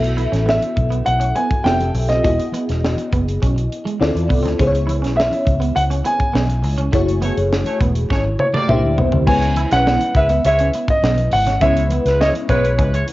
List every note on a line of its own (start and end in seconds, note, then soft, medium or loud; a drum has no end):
0.00 0.26 B1 medium
0.00 1.62 B3 medium
0.00 1.62 E4 medium
0.00 1.62 F#4 medium
0.00 1.62 A4 medium
0.00 1.63 E5 medium
0.00 muted clean electric guitar stroke soft
0.04 closed hi-hat medium
0.17 0.30 E4 medium
0.17 closed hi-hat medium
0.17 high conga medium
0.32 0.57 A1 medium
0.32 0.44 C#4 medium
0.32 snare soft
0.32 closed hi-hat medium
0.46 0.59 B3 medium
0.46 1.09 E5 medium
0.46 snare loud
0.46 muted conga soft
0.61 closed hi-hat medium
0.61 high conga medium
0.76 1.02 B1 medium
0.76 muted clean electric guitar stroke soft
0.76 kick medium
0.76 closed hi-hat medium
0.76 muted conga soft
0.90 1.03 B3 medium
0.90 closed hi-hat soft
1.05 1.31 B1 medium
1.05 1.36 F#5 medium
1.05 muted clean electric guitar stroke soft
1.05 closed hi-hat medium
1.05 muted conga soft
1.20 1.32 C#4 medium
1.20 closed hi-hat medium
1.35 1.47 B3 medium
1.35 1.66 G#5 medium
1.35 closed hi-hat medium
1.35 muted conga soft
1.51 kick medium
1.51 closed hi-hat soft
1.51 high conga medium
1.64 1.90 F1 medium
1.64 1.77 B3 medium
1.64 2.24 C4 medium
1.64 2.25 F4 medium
1.64 2.25 G4 medium
1.64 2.25 A4 medium
1.64 2.25 E5 medium
1.64 2.06 G5 medium
1.64 snare loud
1.64 muted conga soft
1.64 high conga soft
1.79 closed hi-hat soft
1.79 high conga medium
1.94 2.19 B1 medium
1.94 muted clean electric guitar stroke soft
1.94 open hi-hat medium
1.94 low conga medium
2.09 2.21 C4 medium
2.09 3.22 D#5 medium
2.09 snare soft
2.09 closed hi-hat medium
2.09 low conga medium
2.23 2.37 E1 loud
2.23 2.36 G#3 medium
2.23 3.96 B3 medium
2.23 3.96 E4 medium
2.23 3.96 F#4 medium
2.23 3.97 G#4 medium
2.23 3.97 D#5 medium
2.23 kick loud
2.23 closed hi-hat medium
2.23 low conga medium
2.39 muted clean electric guitar stroke soft
2.39 closed hi-hat medium
2.52 2.65 B3 medium
2.52 closed hi-hat medium
2.52 muted conga soft
2.52 high conga medium
2.69 2.93 E1 medium
2.69 snare soft
2.69 closed hi-hat medium
2.83 snare loud
2.83 muted conga soft
2.96 closed hi-hat medium
2.96 high conga medium
3.13 3.37 F#1 medium
3.13 3.24 B3 medium
3.13 kick medium
3.13 closed hi-hat medium
3.28 closed hi-hat medium
3.40 3.67 B1 medium
3.40 3.54 C#4 medium
3.40 kick medium
3.40 closed hi-hat medium
3.40 muted conga soft
3.56 muted clean electric guitar stroke soft
3.56 closed hi-hat medium
3.70 closed hi-hat medium
3.70 muted conga soft
3.85 3.97 G#3 medium
3.85 closed hi-hat soft
3.85 high conga soft
3.99 4.13 D2 loud
3.99 4.59 C4 medium
3.99 4.58 E4 medium
3.99 4.59 F4 medium
3.99 4.59 A4 medium
3.99 4.59 D5 medium
3.99 muted clean electric guitar stroke soft
3.99 snare loud
3.99 muted conga soft
3.99 high conga soft
4.14 4.27 E2 medium
4.14 closed hi-hat medium
4.14 high conga medium
4.29 4.45 C2 medium
4.29 4.41 B3 medium
4.29 kick loud
4.29 open hi-hat medium
4.29 muted conga soft
4.29 low conga medium
4.43 4.57 D2 medium
4.43 4.55 C4 medium
4.43 closed hi-hat medium
4.43 low conga medium
4.47 snare soft
4.58 5.03 C#2 loud
4.58 6.89 B3 medium
4.58 6.89 C#4 medium
4.58 6.89 E4 medium
4.58 6.90 G#4 medium
4.58 4.66 C5 medium
4.58 kick loud
4.58 closed hi-hat medium
4.58 muted conga soft
4.58 low conga medium
4.67 6.93 C#5 medium
4.72 muted clean electric guitar stroke soft
4.72 closed hi-hat medium
4.87 4.99 E4 medium
4.87 closed hi-hat medium
4.87 muted conga soft
4.87 high conga medium
5.02 5.28 B1 medium
5.02 5.14 C#4 medium
5.02 snare soft
5.02 closed hi-hat medium
5.16 5.28 B3 medium
5.16 5.77 E5 medium
5.16 snare loud
5.16 muted conga soft
5.31 closed hi-hat soft
5.31 high conga medium
5.45 5.71 C#2 medium
5.45 muted clean electric guitar stroke soft
5.45 kick medium
5.45 closed hi-hat medium
5.45 muted conga soft
5.60 5.72 B3 medium
5.60 closed hi-hat medium
5.75 6.01 C#2 medium
5.75 5.82 F#5 medium
5.75 muted clean electric guitar stroke soft
5.75 closed hi-hat medium
5.75 muted conga soft
5.90 6.02 C#4 medium
5.90 closed hi-hat medium
6.04 6.17 B3 medium
6.04 8.65 G#5 medium
6.04 closed hi-hat medium
6.04 muted conga soft
6.19 kick medium
6.19 closed hi-hat soft
6.19 high conga soft
6.33 6.64 B1 loud
6.33 6.46 B3 medium
6.33 snare loud
6.33 muted conga soft
6.33 high conga soft
6.47 closed hi-hat soft
6.47 high conga medium
6.62 6.88 C#2 medium
6.62 muted clean electric guitar stroke soft
6.62 open hi-hat medium
6.62 low conga medium
6.77 6.90 C#4 medium
6.77 closed hi-hat medium
6.77 low conga medium
6.92 7.30 F#1 medium
6.92 7.05 A3 medium
6.92 8.65 A3 medium
6.92 8.65 E4 medium
6.92 8.66 F#4 medium
6.92 8.66 G#4 medium
6.92 8.66 C#5 medium
6.92 kick loud
6.92 closed hi-hat medium
6.92 muted conga soft
6.92 low conga medium
7.07 muted clean electric guitar stroke soft
7.07 closed hi-hat medium
7.21 7.35 A3 medium
7.21 7.34 B3 medium
7.21 7.35 G#4 medium
7.21 7.35 C#5 medium
7.21 closed hi-hat medium
7.21 muted conga soft
7.21 high conga medium
7.37 7.62 F#1 medium
7.37 closed hi-hat medium
7.51 snare loud
7.51 muted conga soft
7.65 7.79 A3 medium
7.65 7.78 G#4 medium
7.65 7.78 C#5 medium
7.65 closed hi-hat medium
7.65 high conga medium
7.79 8.05 E1 medium
7.79 7.93 B3 medium
7.79 kick medium
7.79 closed hi-hat medium
7.79 muted conga soft
7.95 closed hi-hat medium
8.09 8.35 G#1 medium
8.09 8.22 A3 medium
8.09 8.22 C#4 medium
8.09 8.23 G#4 medium
8.09 8.23 C#5 medium
8.09 kick medium
8.09 snare medium
8.09 muted conga soft
8.25 muted clean electric guitar stroke soft
8.38 8.46 C#5 medium
8.38 high tom medium
8.38 muted conga soft
8.53 8.66 A3 medium
8.53 8.96 A#3 loud
8.53 8.96 G4 loud
8.53 8.96 D5 loud
8.53 high tom medium
8.53 high conga medium
8.68 8.81 C2 loud
8.68 9.27 A#3 medium
8.68 9.27 D4 medium
8.68 8.76 D#4 medium
8.68 9.28 G4 medium
8.68 9.28 C5 medium
8.68 9.29 E5 medium
8.68 muted clean electric guitar stroke soft
8.68 mid tom medium
8.68 muted conga soft
8.68 high conga soft
8.76 9.27 E4 medium
8.82 8.96 D2 medium
8.82 high conga medium
8.98 9.11 C2 medium
8.98 9.10 B3 medium
8.98 floor tom loud
8.98 muted conga soft
8.98 low conga medium
9.12 9.25 D2 medium
9.12 9.24 C4 medium
9.12 floor tom medium
9.12 low conga medium
9.26 9.64 C#2 loud
9.26 11.57 G#3 medium
9.26 9.51 G#3 loud
9.26 11.57 B3 medium
9.26 11.57 C#4 medium
9.26 9.51 E4 medium
9.26 11.58 E4 medium
9.26 11.58 B4 medium
9.26 9.51 C#5 loud
9.26 9.68 G#5 medium
9.26 kick loud
9.26 crash loud
9.26 low conga medium
9.42 muted clean electric guitar stroke soft
9.42 closed hi-hat medium
9.55 9.69 E4 medium
9.55 closed hi-hat medium
9.55 muted conga soft
9.55 high conga medium
9.71 9.96 B1 medium
9.71 9.83 G#3 medium
9.71 9.84 C#4 medium
9.71 9.83 E4 medium
9.71 9.83 B4 medium
9.71 10.17 F#5 loud
9.71 snare soft
9.71 closed hi-hat medium
9.86 9.98 B3 medium
9.86 snare loud
9.86 muted conga soft
9.99 closed hi-hat medium
9.99 high conga medium
10.15 10.39 C#2 medium
10.15 10.27 G#3 medium
10.15 10.27 E4 medium
10.15 10.27 B4 medium
10.15 10.45 E5 medium
10.15 muted clean electric guitar stroke soft
10.15 kick loud
10.15 closed hi-hat medium
10.29 10.41 B3 medium
10.29 closed hi-hat medium
10.43 10.69 C#2 medium
10.43 10.68 G#3 medium
10.43 10.68 E4 loud
10.43 10.68 C#5 loud
10.43 10.90 E5 loud
10.43 muted clean electric guitar stroke soft
10.43 closed hi-hat medium
10.43 muted conga soft
10.59 10.71 C#4 medium
10.59 closed hi-hat medium
10.72 10.86 B3 medium
10.72 closed hi-hat medium
10.72 muted conga soft
10.87 11.30 D#5 medium
10.87 kick loud
10.87 closed hi-hat soft
10.87 high conga soft
11.02 11.27 B1 loud
11.02 11.15 B3 medium
11.02 snare loud
11.02 muted conga soft
11.02 high conga soft
11.16 closed hi-hat soft
11.16 high conga medium
11.31 11.56 G#1 medium
11.31 11.62 F#5 medium
11.31 muted clean electric guitar stroke soft
11.31 open hi-hat medium
11.31 muted conga soft
11.31 low conga medium
11.46 11.59 C#4 medium
11.46 snare soft
11.46 closed hi-hat medium
11.46 low conga medium
11.60 11.98 C#2 loud
11.60 13.13 G#3 medium
11.60 11.85 G#3 loud
11.60 13.13 B3 medium
11.60 13.13 C#4 medium
11.60 11.74 C#4 medium
11.60 11.85 E4 loud
11.60 13.13 E4 medium
11.60 13.13 B4 medium
11.60 11.85 C#5 loud
11.60 12.21 E5 medium
11.60 kick loud
11.60 closed hi-hat medium
11.60 low conga medium
11.77 muted clean electric guitar stroke soft
11.77 closed hi-hat medium
11.89 12.03 B3 medium
11.89 closed hi-hat medium
11.89 muted conga soft
11.89 high conga medium
12.05 12.30 C#2 medium
12.05 12.17 G#3 medium
12.05 12.17 E4 medium
12.05 12.17 B4 medium
12.05 snare soft
12.05 closed hi-hat medium
12.21 12.32 G#3 medium
12.21 12.32 E4 medium
12.21 12.32 C#5 medium
12.21 12.27 D#5 medium
12.21 snare loud
12.32 closed hi-hat medium
12.32 high conga medium
12.48 12.78 B1 medium
12.48 12.73 G#3 loud
12.48 12.61 B3 medium
12.48 12.73 E4 loud
12.48 12.73 B4 loud
12.48 13.04 C#5 medium
12.48 kick medium
12.48 closed hi-hat medium
12.48 muted conga soft
12.65 closed hi-hat medium
12.77 13.03 C#2 medium
12.77 12.91 G#3 medium
12.77 12.90 C#4 medium
12.77 12.90 E4 medium
12.77 12.91 B4 medium
12.77 kick medium
12.77 closed hi-hat medium
12.77 muted conga soft
12.93 13.05 G#3 medium
12.93 13.05 E4 medium
12.93 13.05 C#5 medium
12.93 muted clean electric guitar stroke soft
12.93 closed hi-hat medium
13.07 closed hi-hat medium
13.07 muted conga soft